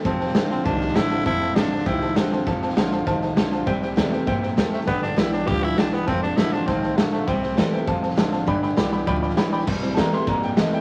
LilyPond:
<<
  \new Staff \with { instrumentName = "Upright piano" } { \time 4/4 \key c \major \tempo 4 = 200 <c'' f'' a''>8 <c'' f'' a''>8 <c'' f'' a''>8 <c'' f'' a''>8 <c'' f'' a''>8 <c'' f''>8 <c'' f'' a''>8 <c'' f'' a''>8 | <c'' f'' a''>8 <c'' f'' a''>8 <c'' f'' a''>8 <c'' f'' a''>8 <c'' f'' g''>8 <c'' a''>8 <c'' f'' a''>8 <c'' f'' a''>8 | <c'' f'' a''>8 <c'' f'' a''>8 <c'' f'' a''>8 <c'' f'' a''>8 <c'' f'' a''>8 <c'' f'' a''>8 <c'' f'' a''>8 <c'' f'' a''>8 | <c'' e'' g''>8 <c'' e'' g''>8 <c'' e'' g''>8 <c'' e'' g''>8 <c'' e'' g''>8 <c'' e'' g''>8 <c'' e'' g''>8 <c'' e'' g''>8 |
<b' d'' g''>8 <b' d'' g''>8 <b' d'' g''>8 <b' d'' g''>8 <b' d'' g''>8 <b' d'' g''>8 <b' d'' g''>8 <b' d'' g''>8 | <c'' f'' a''>8 <c'' a''>8 <c'' f'' a''>8 <c'' f'' a''>8 <c'' f'' a''>8 <c'' f'' a''>8 <c'' f'' a''>8 <c'' f'' a''>8 | <c'' e'' g''>8 <c'' e'' g''>8 <c'' e'' g''>8 <c'' e'' g''>8 <c'' f'' a''>8 <c'' f'' a''>8 <c'' f'' a''>8 <c'' f'' a''>8 | <d'' g'' b''>8 <d'' g'' b''>8 <d'' g'' b''>8 <d'' g'' b''>8 <d'' g'' b''>8 <d'' g'' b''>8 <d'' g'' b''>8 <d'' g'' b''>8 |
r8 <e g c'>8 <a'' bes''>8 c'''8 bes''8 g''8 ees''8 g''8 | }
  \new Staff \with { instrumentName = "Tenor saxophone" } { \time 4/4 \key c \major c'4. c'8 d'4 e'4 | e'4 d'4 e'4 c'4 | r1 | r2. r8 a8 |
b8 d'8 e'8 d'8 g'8 e'8 d'8 b8 | c'8 d'8 e'8 d'8 c'4 a8 a8 | c'4. r2 r8 | r1 |
r1 | }
  \new Staff \with { instrumentName = "Steel-string acoustic guitar" } { \time 4/4 \key c \major << { r4 <f a c' f'>8 <c' f'>8 r4 <f a c' f'>8 <c' f'>8 | r4 <f a c' f'>8 f'8 r4 <f a c' f'>8 <c' f'>8 | r4 <f a c' f'>8 <c' f'>8 r4 <f a c' f'>8 <c' f'>8 | r4 <e g c' e'>8 <c' e'>8 r2 |
r4 <d g b g'>8 <b g'>8 r2 | r4 <f a c' f'>8 <c' f'>8 r2 | r4 <e g c' e'>8 <c' e'>8 r4 <f a c' f'>8 <c' f'>8 | r4 <d g b g'>8 <b g'>8 r2 |
r4 <e g c' e'>8 <c' e'>8 r4 <e g c' e'>8 <c' e'>8 | } \\ { f,2 c2 | f,2 c2 | f,2 c2 | c2 bes,4 a,4 |
g,2 a,4 g,4 | f,2 a,4 bes,4 | c2 f,2 | g,2 a,4 b,4 |
c2 g,2 | } >> }
  \new Staff \with { instrumentName = "Clean electric guitar" } { \clef bass \time 4/4 \key c \major <f, c>4 <f, d>4 <f, ees>4 <f, d>4 | <f, c>4 <f, d>4 <f, ees>4 <f, d>4 | <f, c>4 <f, d>4 <f, ees>4 <f, d>4 | <c g>4 <c a>4 <c bes>4 <c a>4 |
<g, d>4 <g, e>4 <g, f>4 <g, e>4 | <f, c>4 <f, d>4 <f, ees>4 <f, d>4 | <c g>4 <c a>4 <f, c>4 <f, d>4 | <g, d>4 <g, e>4 <g, f>4 <g, e>4 |
<c g>4 <c a>4 <c bes>4 <c a>4 | }
  \new Staff \with { instrumentName = "Upright bass" } { \clef bass \time 4/4 \key c \major f,,4 a,,4 c,4 a,,4 | f,,4 a,,4 c,4 a,,4 | f,,4 a,,4 c,4 b,,4 | c,4 e,4 g,4 e,4 |
g,,4 b,,4 d,4 b,,4 | f,,4 a,,4 c,4 a,,4 | c,4 e,4 f,,4 a,,4 | g,,4 b,,4 d,4 b,,4 |
c,4 e,4 g,4 e,4 | }
  \new DrumStaff \with { instrumentName = "Drums" } \drummode { \time 4/4 <bd sn>8 sn16 sn16 <hhp sn>8 sn8 <bd sn>8 sn16 sn16 <hhp sn>8 sn16 sn16 | <bd sn>8 sn8 <hhp sn>8 sn16 sn16 <bd sn>8 sn8 <hhp sn>8 sn8 | <bd sn>8 sn16 sn16 <hhp sn>8 sn8 <bd sn>8 sn8 <hhp sn>8 sn8 | <bd sn>8 sn8 <hhp sn>8 sn8 <bd sn>8 sn8 <hhp sn>8 sn16 sn16 |
<bd sn>8 sn8 <hhp sn>8 sn8 <bd sn>8 sn8 <hhp sn>8 sn8 | <bd sn>8 sn8 <hhp sn>8 sn8 <bd sn>8 sn8 <hhp sn>8 sn8 | <bd sn>8 sn8 <hhp sn>8 sn8 <bd sn>8 sn16 sn16 <hhp sn>8 sn8 | <bd sn>8 sn8 <hhp sn>8 sn8 <bd sn>8 sn16 sn16 <hhp sn>8 sn16 sn16 |
<cymc bd sn>8 sn8 <hhp sn>8 sn8 <bd sn>8 sn8 <hhp sn>8 sn8 | }
>>